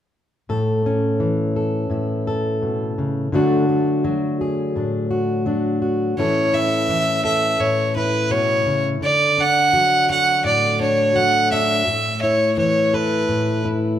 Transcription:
0.49 steel-string acoustic guitar A2 A4
0.86 steel-string acoustic guitar C#4
1.20 steel-string acoustic guitar E3
1.56 steel-string acoustic guitar A4
1.90 steel-string acoustic guitar A2 E4
2.27 steel-string acoustic guitar A4
2.62 steel-string acoustic guitar B2
2.98 steel-string acoustic guitar C#3
3.32 steel-string acoustic guitar D3 F#3 A3 D4 F#4
3.69 steel-string acoustic guitar A3
4.04 steel-string acoustic guitar F#3
4.41 steel-string acoustic guitar G#4
4.76 steel-string acoustic guitar A2 D4
5.11 steel-string acoustic guitar F#4
5.46 steel-string acoustic guitar F#3 D4
5.82 steel-string acoustic guitar F#4
6.17 steel-string acoustic guitar A2 E3 C#4 E4 A4, fiddle C#5
6.53 steel-string acoustic guitar E4, fiddle E5
6.88 steel-string acoustic guitar E3
7.25 steel-string acoustic guitar A4, fiddle E5
7.60 steel-string acoustic guitar A2, fiddle C#5
7.96 steel-string acoustic guitar E4, fiddle B4
8.30 steel-string acoustic guitar B2, fiddle C#5
8.66 steel-string acoustic guitar C#3
9.01 steel-string acoustic guitar D3, fiddle D5
9.38 steel-string acoustic guitar D4, fiddle F#5
9.73 steel-string acoustic guitar F#3
10.09 steel-string acoustic guitar F#4, fiddle F#5
10.44 steel-string acoustic guitar A2, fiddle D5
10.80 steel-string acoustic guitar D4, fiddle C#5
11.15 steel-string acoustic guitar F#3 A3, fiddle F#5
11.51 steel-string acoustic guitar D4, fiddle E5
11.87 steel-string acoustic guitar A2
12.22 steel-string acoustic guitar E4, fiddle C#5
12.58 steel-string acoustic guitar E3, fiddle C#5
12.94 steel-string acoustic guitar A4, fiddle B4
13.29 steel-string acoustic guitar A2
13.65 steel-string acoustic guitar E4

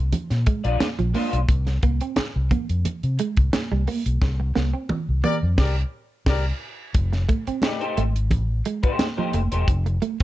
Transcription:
Already playing: fingered electric bass C2
0.12 muted fingered electric bass stroke, closed hi-hat, muted conga, low conga
0.30 fingered electric bass A#2, snare, closed hi-hat
0.46 clean electric guitar G#3, kick, closed hi-hat
0.64 fingered electric bass A#1, clean electric guitar G#3 D4 F4 D5, closed hi-hat
0.80 muted clean electric guitar stroke, muted fingered electric bass stroke, snare, closed hi-hat, high conga
0.99 fingered electric bass A#1, clean electric guitar F3, closed hi-hat
1.14 clean electric guitar G#3 A#3 D4 F4 C5, open hi-hat, high conga
1.33 fingered electric bass B1, closed hi-hat
1.49 fingered electric bass C2, kick, closed hi-hat, muted conga
1.67 muted clean electric guitar stroke, snare, closed hi-hat
1.83 fingered electric bass C2, clean electric guitar A#3, kick, closed hi-hat, muted conga
2.01 clean electric guitar C4, closed hi-hat
2.16 muted fingered electric bass stroke, snare, closed hi-hat, high conga
2.36 fingered electric bass C2
2.51 clean electric guitar A#3, kick, closed hi-hat, low conga
2.69 fingered electric bass F2, closed hi-hat
2.85 muted fingered electric bass stroke, closed hi-hat, muted conga, low conga
3.03 fingered electric bass C3, closed hi-hat
3.19 clean electric guitar G#3, closed hi-hat
3.37 fingered electric bass C2, kick, closed hi-hat
3.53 muted clean electric guitar stroke, muted fingered electric bass stroke, snare, closed hi-hat, high conga
3.72 fingered electric bass C2, clean electric guitar G3
3.87 clean electric guitar A#3, open hi-hat, high conga
4.06 fingered electric bass B1, closed hi-hat
4.22 fingered electric bass C2, kick, snare
4.40 muted clean electric guitar stroke
4.55 fingered electric bass C2, clean electric guitar A#3, snare, muted conga
4.73 clean electric guitar C4
4.89 muted fingered electric bass stroke, high tom, high conga
5.09 fingered electric bass C2
5.24 clean electric guitar A#3, horn section G4 A#4 D5, high tom
5.43 fingered electric bass F2
5.58 fingered electric bass C2, horn section G4 A#4 D5, kick, snare, crash
6.26 fingered electric bass C2, horn section G4 A#4 D5, kick, snare, crash
6.94 fingered electric bass F1, kick, closed hi-hat
7.13 muted clean electric guitar stroke, snare, closed hi-hat
7.29 clean electric guitar A3, kick, closed hi-hat, muted conga
7.47 clean electric guitar C4, muted fingered electric bass stroke, closed hi-hat
7.62 clean electric guitar A3 D#4 G4 D5, snare, closed hi-hat, high conga
7.80 clean electric guitar A3 D#4 G4 C5, closed hi-hat
7.97 fingered electric bass G#1, clean electric guitar A3, closed hi-hat
8.16 closed hi-hat
8.31 fingered electric bass A1, kick, closed hi-hat, muted conga, low conga
8.65 clean electric guitar G#3, closed hi-hat
8.83 clean electric guitar A3 D#4 G4 C5, kick, closed hi-hat
8.99 muted clean electric guitar stroke, snare, closed hi-hat, high conga
9.17 clean electric guitar F3 A3 D#4 G4 C5, high conga
9.33 fingered electric bass F1, clean electric guitar A3, closed hi-hat, high conga
9.52 fingered electric bass E1, clean electric guitar A3 D#4 G4 C5, closed hi-hat
9.68 fingered electric bass F1, kick, closed hi-hat
9.86 muted clean electric guitar stroke, closed hi-hat
10.02 clean electric guitar A3, closed hi-hat, muted conga
10.20 closed hi-hat

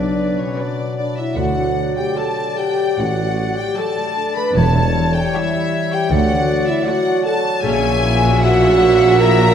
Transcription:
Already playing: tuba B1, double bass section B1, cello section B2, harp B2 F#3, bassoon F#3, french horn section D4, clarinet B4, violin section D5, flute section D5
0.19 harp B3
0.38 harp F#4, violin section C#5, flute section C#5
0.42 french horn section C#4
0.57 viola section F#3 B4, french horn section D4, violin section D5, harp D5, flute section D5
0.79 harp B4
0.97 french horn section D4, violin section D5, flute section D5, harp F#5
1.17 french horn section E4, violin section E5, flute section E5, harp D6
1.35 double bass section D2, tuba D2, cello section D2, harp D3, french horn section F#4, clarinet D5, violin section F#5, flute section F#5
1.57 harp D4
1.78 harp A3
1.96 harp F#4, french horn section G4, violin section G5, flute section G5
2.15 viola section F#3 A4, french horn section A4, harp D5, violin section D5 A5, flute section A5
2.37 harp A4
2.56 french horn section G4, harp F#5, violin section G5, flute section G5
2.78 harp D6
2.96 tuba A1, double bass section A1, cello section A2, french horn section F#4, harp F#5, violin section F#5, flute section F#5
3.18 harp D6
3.37 harp F#5
3.57 french horn section G4, harp D5, violin section G5, flute section G5
3.77 viola section F#3 A4, harp F#4, french horn section A4, violin section D5 A5, flute section A5
3.97 harp A3
4.16 harp D4
4.36 harp A3, french horn section B4, violin section B5, flute section B5
4.55 tuba E1, double bass section E1, cello section E2, harp E3, bassoon G3, clarinet C#5, violin section A5, flute section A5
4.59 french horn section A4
4.75 harp E4
4.95 harp G3
5.15 harp G4, french horn section G4, violin section G5, flute section G5
5.33 viola section G3 G4, french horn section E4, violin section C#5 E5, harp C#5
5.37 flute section E5
5.53 harp G4
5.72 harp G5
5.91 french horn section G4, violin section G5, flute section G5, harp C#6
6.09 cello section D2, double bass section D2, tuba D2, harp D3, bassoon F#3, french horn section F#4, clarinet D5, violin section F#5, flute section F#5
6.29 harp D4
6.48 harp A3
6.67 french horn section E4, harp F#4, violin section E5, flute section E5
6.85 viola section A3 F#4, french horn section F#4, harp D5, violin section D5 F#5, flute section F#5
7.06 harp A4
7.24 french horn section A4, harp F#5, violin section A5, flute section A5
7.44 harp D6
7.62 double bass section A#1, tuba A#1, harp A#2, cello section A#2, viola section A#3 C#4, french horn section G#4, violin section E5 G#5, clarinet E5, flute section G#5
7.83 harp A#3, viola section C#4
8.02 harp C#4, viola section E4
8.22 viola section F#4, harp F#4
8.41 viola section E4, french horn section F#4, harp E5, violin section F#5, flute section F#5
8.62 viola section C#4, harp C#5
8.81 viola section A#3, harp F#5
9.01 viola section C#4, harp E6
9.19 viola section E4, french horn section A#4, harp F#5, flute section A#5, violin section A#5
9.40 viola section F#4, harp E6

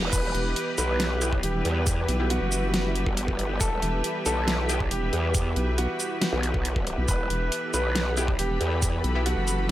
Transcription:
Already playing: supersaw synth E3 B3 B4, string section G4 B4 D#5, reverse cymbal
0.02 wobble bass E1
0.13 wobble bass E1, supersaw synth G3, grand piano B4, kick, closed hi-hat, crash, shaker
0.35 wobble bass E1, closed hi-hat
0.56 closed hi-hat
0.78 wobble bass B1, grand piano B4, string section E5, closed hi-hat, shaker
1.00 snare, closed hi-hat
1.21 synth stab B3 E4 G4, closed hi-hat, shaker
1.33 kick
1.43 wobble bass E1, grand piano G4, closed hi-hat
1.65 wobble bass E2, closed hi-hat
1.87 kick, closed hi-hat, shaker
2.08 wobble bass B1, closed hi-hat
2.20 synth stab B3 E4 G4
2.30 grand piano F#4, closed hi-hat
2.41 wobble bass F#1
2.52 closed hi-hat, shaker
2.74 snare, closed hi-hat
2.95 closed hi-hat
3.06 wobble bass G1, kick
3.17 closed hi-hat
3.28 kick
3.39 closed hi-hat
3.61 wobble bass E1, grand piano A4, kick, closed hi-hat, shaker
3.82 wobble bass E1, closed hi-hat
4.04 closed hi-hat
4.26 wobble bass B1, grand piano A4, closed hi-hat, shaker
4.48 snare, closed hi-hat
4.69 synth stab B3 E4 G4, closed hi-hat, shaker
4.80 kick
4.91 wobble bass E1, grand piano G4, closed hi-hat
5.13 wobble bass E2, closed hi-hat
5.35 kick, closed hi-hat, shaker
5.56 wobble bass B1, closed hi-hat
5.78 grand piano F#4, closed hi-hat
6.00 closed hi-hat, shaker
6.22 snare, closed hi-hat
6.33 wobble bass B1
6.43 closed hi-hat
6.54 kick
6.65 closed hi-hat
6.76 kick
6.87 closed hi-hat
6.98 wobble bass B1
7.08 wobble bass E1, supersaw synth A4, grand piano B4, kick, closed hi-hat, shaker
7.30 wobble bass E1, closed hi-hat
7.52 closed hi-hat
7.74 wobble bass B1, grand piano B4, string section B5, closed hi-hat, shaker
7.95 snare, closed hi-hat
8.17 synth stab B3 E4 G4, closed hi-hat, shaker
8.28 kick
8.39 wobble bass E1, grand piano G4, closed hi-hat
8.61 wobble bass E2, closed hi-hat
8.82 kick, closed hi-hat, shaker
9.04 wobble bass B1, closed hi-hat
9.15 synth stab B3 E4 G4
9.26 grand piano F#4, closed hi-hat
9.37 wobble bass F#1
9.48 closed hi-hat, shaker

